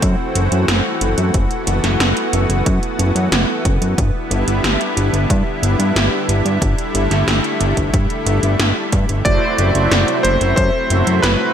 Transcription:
0.00 0.16 F#2 loud
0.00 3.94 E3 medium
0.00 3.94 A3 medium
0.00 1.32 C4 medium
0.00 3.94 F#4 medium
0.00 kick loud
0.00 closed hi-hat medium
0.35 0.49 F#1 medium
0.35 closed hi-hat medium
0.52 0.65 F#2 medium
0.52 closed hi-hat medium
0.68 0.82 F#1 loud
0.68 snare loud
0.68 closed hi-hat medium
1.01 1.15 F#1 medium
1.01 closed hi-hat medium
1.18 1.31 F#2 medium
1.18 closed hi-hat medium
1.34 1.48 F#1 loud
1.34 6.58 B3 medium
1.34 kick loud
1.34 closed hi-hat medium
1.51 closed hi-hat soft
1.67 1.81 F#1 loud
1.67 closed hi-hat medium
1.84 1.97 F#1 medium
1.84 snare soft
1.84 closed hi-hat medium
2.00 2.13 F#1 loud
2.00 snare loud
2.00 closed hi-hat medium
2.17 closed hi-hat soft
2.33 2.47 F#1 loud
2.33 closed hi-hat medium
2.50 2.63 F#1 medium
2.50 closed hi-hat medium
2.66 2.80 F#2 loud
2.66 kick loud
2.66 closed hi-hat medium
2.83 closed hi-hat soft
2.99 3.12 F#1 medium
2.99 closed hi-hat medium
3.15 3.29 F#2 medium
3.15 closed hi-hat medium
3.32 3.45 F#1 loud
3.32 snare loud
3.32 closed hi-hat medium
3.65 3.78 F#1 medium
3.65 kick loud
3.65 closed hi-hat medium
3.81 3.95 F#2 medium
3.81 closed hi-hat medium
3.98 4.11 G1 loud
3.98 9.22 D3 medium
3.98 9.22 G3 medium
3.98 9.22 E4 medium
3.98 kick loud
3.98 closed hi-hat medium
4.31 4.44 G1 loud
4.31 closed hi-hat medium
4.47 4.61 G1 medium
4.47 closed hi-hat medium
4.64 4.77 G1 loud
4.64 snare loud
4.64 closed hi-hat medium
4.81 closed hi-hat soft
4.97 5.10 G1 medium
4.97 closed hi-hat medium
5.13 5.27 G1 medium
5.13 closed hi-hat medium
5.30 5.43 G2 loud
5.30 kick loud
5.30 closed hi-hat medium
5.63 5.76 G1 medium
5.63 closed hi-hat medium
5.79 5.93 G2 medium
5.79 closed hi-hat medium
5.96 6.09 G1 loud
5.96 snare loud
5.96 closed hi-hat medium
6.29 6.42 G1 medium
6.29 closed hi-hat medium
6.45 6.59 G2 medium
6.45 closed hi-hat medium
6.62 6.75 G1 loud
6.62 9.23 A3 medium
6.62 kick loud
6.62 closed hi-hat medium
6.78 closed hi-hat soft
6.95 7.08 G1 loud
6.95 closed hi-hat medium
7.11 7.24 G1 medium
7.11 snare soft
7.11 closed hi-hat medium
7.27 7.41 G1 loud
7.27 snare loud
7.27 closed hi-hat medium
7.44 closed hi-hat soft
7.61 7.74 G1 medium
7.61 closed hi-hat medium
7.77 7.91 G1 medium
7.77 kick medium
7.77 closed hi-hat soft
7.94 8.07 G2 loud
7.94 kick loud
7.94 closed hi-hat medium
8.10 closed hi-hat soft
8.26 8.40 G1 loud
8.26 closed hi-hat medium
8.43 8.56 G1 medium
8.43 closed hi-hat soft
8.59 8.73 G1 loud
8.59 snare loud
8.59 closed hi-hat medium
8.93 9.06 G2 medium
8.93 kick loud
8.93 closed hi-hat medium
9.09 9.22 G1 medium
9.09 closed hi-hat medium
9.25 9.39 F#1 loud
9.25 11.53 C3 medium
9.25 11.53 F#3 medium
9.25 11.53 A3 medium
9.25 9.71 A3 loud
9.25 9.71 E4 medium
9.25 11.53 E4 medium
9.25 9.71 F#4 medium
9.25 9.71 C5 loud
9.25 10.27 D5 loud
9.25 kick loud
9.25 closed hi-hat medium
9.58 9.72 F#1 loud
9.58 closed hi-hat medium
9.75 9.88 F#1 medium
9.75 10.37 A3 medium
9.75 10.37 E4 medium
9.75 10.37 F#4 medium
9.75 10.37 C5 loud
9.75 closed hi-hat medium
9.91 10.05 F#1 loud
9.91 snare loud
9.91 closed hi-hat medium
10.08 closed hi-hat soft
10.23 10.38 F#1 loud
10.23 10.55 C5 medium
10.23 closed hi-hat medium
10.41 10.54 F#1 medium
10.41 10.54 A3 medium
10.41 10.54 E4 medium
10.41 10.54 F#4 medium
10.41 10.54 E5 medium
10.41 closed hi-hat soft
10.56 10.71 F#2 loud
10.56 11.25 C5 loud
10.56 kick loud
10.56 closed hi-hat medium
10.90 11.04 F#1 medium
10.90 11.36 A3 medium
10.90 11.36 E4 medium
10.90 11.36 F#4 medium
10.90 11.36 C5 loud
10.90 closed hi-hat medium
11.07 11.20 F#2 medium
11.07 closed hi-hat soft
11.22 11.37 F#1 loud
11.22 11.53 B4 loud
11.22 snare loud
11.22 closed hi-hat medium
11.40 11.53 A3 medium
11.40 11.53 E4 medium
11.40 11.53 F#4 medium
11.40 11.53 C5 loud

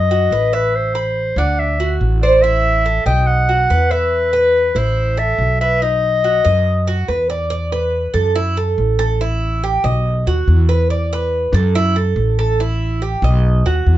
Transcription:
0.00 0.27 F#2 loud
0.00 0.55 D#5 loud
0.11 0.31 F#4 medium
0.31 1.31 A1 medium
0.31 0.52 B4 medium
0.53 0.77 B4 medium
0.53 0.94 E5 medium
0.76 1.40 C5 medium
0.95 1.36 B5 medium
1.36 1.96 D2 medium
1.36 1.79 D4 medium
1.36 1.61 F#5 medium
1.59 1.96 E5 medium
1.80 2.21 F#4 medium
2.01 3.00 A1 medium
2.23 2.43 C5 medium
2.23 2.44 D5 medium
2.42 2.84 E4 medium
2.42 3.05 E5 loud
2.86 3.06 A4 medium
3.06 3.66 B1 loud
3.06 3.48 D#5 medium
3.06 3.29 G5 loud
3.27 3.93 F#5 loud
3.49 3.70 F#4 medium
3.70 4.70 E2 medium
3.70 3.91 B4 medium
3.91 4.79 B4 loud
3.91 4.32 E5 medium
4.33 4.74 B4 medium
4.75 5.35 A1 medium
4.75 5.17 E4 medium
4.75 5.20 C5 medium
5.17 5.59 A4 medium
5.17 5.60 E5 loud
5.38 6.39 B1 medium
5.61 5.82 B4 medium
5.61 5.84 E5 loud
5.82 6.23 D#4 medium
5.82 7.09 D#5 loud
6.24 6.45 F#4 medium
6.45 7.05 F#2 loud
6.45 6.86 D#5 medium
6.87 7.08 F#4 medium
7.08 8.09 E2 medium
7.08 7.29 B4 medium
7.30 7.49 D5 medium
7.50 7.71 D5 medium
7.72 8.13 B4 medium
8.14 8.74 F#2 loud
8.14 8.35 A4 medium
8.35 8.56 E4 medium
8.57 8.98 A4 medium
8.78 9.78 A1 medium
8.99 9.20 A4 medium
9.21 9.62 E4 medium
9.64 9.84 G4 medium
9.84 10.23 B1 loud
9.84 10.25 D#5 medium
10.27 10.46 D#2 medium
10.27 10.68 F#4 medium
10.48 11.47 E2 medium
10.69 10.89 B4 medium
10.90 11.11 D5 medium
11.13 11.53 B4 medium
11.53 12.13 F#2 loud
11.53 11.74 A4 medium
11.75 11.96 E4 loud
11.96 12.37 A4 medium
12.16 13.16 A1 loud
12.39 12.59 A4 medium
12.60 13.01 E4 medium
13.02 13.22 G4 medium
13.22 13.62 B1 loud
13.22 13.65 D#5 medium
13.65 13.85 D#2 medium
13.65 13.98 F#4 medium
13.86 13.98 E2 medium

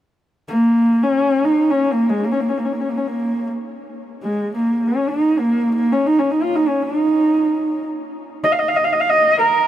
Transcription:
0.49 1.04 A#3 medium
1.03 1.46 C#4 medium
1.45 1.72 D#4 medium
1.71 1.93 C#4 medium
1.92 2.11 A#3 medium
2.10 2.26 G#3 medium
2.24 2.34 A#3 medium
2.32 2.42 C#4 medium
2.41 2.51 A#3 medium
2.49 2.60 C#4 medium
2.58 2.67 A#3 medium
2.65 2.75 C#4 soft
2.73 2.82 A#3 soft
2.81 2.91 C#4 soft
2.90 2.99 A#3 medium
2.97 3.09 C#4 soft
3.08 3.50 A#3 medium
4.23 4.52 G#3 medium
4.54 4.89 A#3 medium
4.88 5.11 C#4 medium
5.09 5.41 D#4 medium
5.40 5.75 A#3 medium
5.75 5.94 A#3 medium
5.92 6.08 C#4 medium
6.07 6.21 D#4 medium
6.19 6.33 C#4 medium
6.31 6.45 D#4 medium
6.43 6.57 F4 medium
6.56 6.70 D#4 medium
6.68 6.84 C#4 medium
6.83 7.86 D#4 medium
8.44 8.54 D#5 medium
8.52 8.61 F5 medium
8.59 8.70 D#5 medium
8.69 8.78 F5 medium
8.76 8.86 D#5 medium
8.84 8.95 F5 medium
8.93 9.02 D#5 medium
9.01 9.11 F5 medium
9.10 9.38 D#5 medium
9.39 9.67 A#4 medium

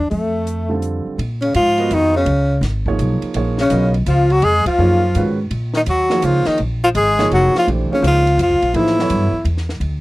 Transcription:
0.00 0.10 E2 medium
0.10 1.03 F2 medium
0.10 0.79 A3 medium
0.10 open hi-hat soft
0.47 closed hi-hat soft
0.69 1.16 D3 medium
0.69 1.16 G3 soft
0.69 1.16 C4 medium
0.69 1.17 F4 soft
0.69 1.17 A4 medium
0.82 closed hi-hat soft
1.06 muted upright bass stroke soft
1.18 1.54 A#2 medium
1.18 ride medium
1.42 1.54 C#3 medium
1.42 1.54 C#4 medium
1.42 ride soft
1.54 1.90 G#2 medium
1.54 1.94 F3 medium
1.54 1.96 F4 medium
1.54 hi-hat pedal soft
1.54 ride medium
1.78 2.25 B3 medium
1.78 2.25 F4 medium
1.78 2.25 F#4 medium
1.78 2.25 A#4 medium
1.78 2.25 D#5 medium
1.78 ride soft
1.91 2.25 F2 medium
1.91 2.15 D#3 medium
1.91 2.16 D#4 medium
1.91 hi-hat pedal medium
1.91 ride medium
2.16 2.60 C#3 medium
2.16 2.61 C#4 medium
2.25 2.61 C#2 medium
2.25 ride medium
2.61 2.97 G#1 medium
2.61 snare soft
2.61 ride medium
2.86 3.32 F3 medium
2.86 3.33 A#3 medium
2.86 3.33 D#4 medium
2.86 3.33 G#4 medium
2.86 3.33 C#5 medium
2.86 kick medium
2.99 3.21 B1 medium
2.99 hi-hat pedal soft
2.99 ride medium
3.22 muted upright bass stroke soft
3.22 ride soft
3.34 3.70 A#1 medium
3.34 3.56 F3 medium
3.34 3.56 A#3 medium
3.34 3.56 D#4 medium
3.34 3.57 G#4 medium
3.34 3.57 C#5 medium
3.34 ride medium
3.58 3.93 C#3 medium
3.58 3.93 C#4 medium
3.58 snare soft
3.70 4.06 B1 medium
3.70 3.91 F#3 medium
3.70 3.92 B3 medium
3.70 3.92 F4 medium
3.70 3.92 A#4 medium
3.70 3.92 D#5 medium
3.70 hi-hat pedal medium
3.70 ride medium
3.94 ride soft
4.06 4.41 C#2 medium
4.06 4.33 F3 medium
4.06 4.34 F4 medium
4.06 hi-hat pedal medium
4.06 ride medium
4.30 4.45 F#3 medium
4.30 4.46 F#4 medium
4.30 ride soft
4.42 4.64 F2 medium
4.42 4.66 G#3 medium
4.42 4.67 G#4 loud
4.42 ride medium
4.66 5.34 F3 medium
4.66 5.35 F4 medium
4.66 muted upright bass stroke soft
4.66 kick medium
4.66 ride medium
4.78 5.13 F#2 medium
4.78 5.00 F3 medium
4.78 5.00 A#3 medium
4.78 5.00 D#4 medium
4.78 5.00 G#4 medium
4.78 5.00 C#5 medium
5.15 5.50 G#2 medium
5.15 5.36 D#3 medium
5.15 5.36 G#3 medium
5.15 5.36 C#4 medium
5.15 5.37 F#4 medium
5.15 5.37 B4 medium
5.15 hi-hat pedal medium
5.15 ride medium
5.51 5.86 A#2 medium
5.51 ride medium
5.74 5.80 D#3 medium
5.74 5.82 D#4 medium
5.74 snare soft
5.86 6.21 D#2 medium
5.86 6.25 F#3 medium
5.86 6.27 F#4 medium
5.86 hi-hat pedal medium
5.86 ride medium
6.10 6.56 F3 medium
6.10 6.56 A#3 medium
6.10 6.56 D#4 medium
6.10 6.57 G#4 medium
6.10 6.57 C#5 medium
6.10 snare soft
6.22 6.45 C#2 medium
6.22 6.49 F3 medium
6.22 6.49 F4 medium
6.22 hi-hat pedal medium
6.22 ride medium
6.45 6.59 D#3 medium
6.45 6.59 D#4 medium
6.45 muted upright bass stroke soft
6.45 snare soft
6.45 ride soft
6.58 6.94 A#1 medium
6.58 ride medium
6.84 6.89 F3 medium
6.84 6.89 F4 medium
6.95 7.29 G#1 medium
6.95 7.28 G#3 medium
6.95 7.29 G#4 loud
6.95 hi-hat pedal soft
6.95 ride medium
7.18 7.64 F3 medium
7.18 7.64 A#3 medium
7.18 7.64 D#4 medium
7.18 7.64 G#4 medium
7.18 7.65 C#5 medium
7.18 snare medium
7.18 ride soft
7.31 7.52 F1 medium
7.31 7.53 F#3 medium
7.31 7.54 F#4 medium
7.31 ride medium
7.55 7.67 F3 medium
7.55 7.68 F4 medium
7.55 snare soft
7.67 7.88 A#1 medium
7.67 7.88 E3 medium
7.67 7.88 A3 medium
7.67 7.88 D4 medium
7.67 7.88 G4 medium
7.67 7.89 C5 medium
7.67 ride medium
7.90 8.02 C#3 medium
7.90 8.22 F3 medium
7.90 8.22 A#3 soft
7.90 8.22 D#4 medium
7.90 8.22 G#4 soft
7.90 8.22 C#5 medium
7.90 muted upright bass stroke soft
7.94 8.04 C#4 medium
8.02 8.37 C#2 medium
8.02 8.36 F3 medium
8.02 hi-hat pedal medium
8.02 ride medium
8.07 8.38 F4 medium
8.27 ride soft
8.37 8.52 F2 medium
8.37 8.76 F3 medium
8.37 hi-hat pedal medium
8.37 ride medium
8.42 8.78 F4 medium
8.50 8.62 C#2 medium
8.62 8.73 A#1 medium
8.62 ride soft
8.74 9.09 A2 medium
8.74 9.46 E3 medium
8.74 8.95 F3 medium
8.74 8.95 A#3 medium
8.74 8.95 D#4 medium
8.74 9.46 E4 medium
8.74 8.96 G#4 medium
8.74 8.96 C5 medium
8.74 ride medium
8.87 snare soft
8.99 9.29 F#3 medium
8.99 9.30 B3 medium
8.99 9.30 E4 medium
8.99 9.30 A4 medium
8.99 9.30 C#5 medium
8.99 snare soft
9.10 9.31 G2 medium
9.10 hi-hat pedal medium
9.10 ride medium
9.32 muted upright bass stroke soft
9.45 9.80 E2 medium
9.45 ride medium
9.57 snare soft
9.69 snare soft
9.80 10.01 D2 medium
9.80 ride medium

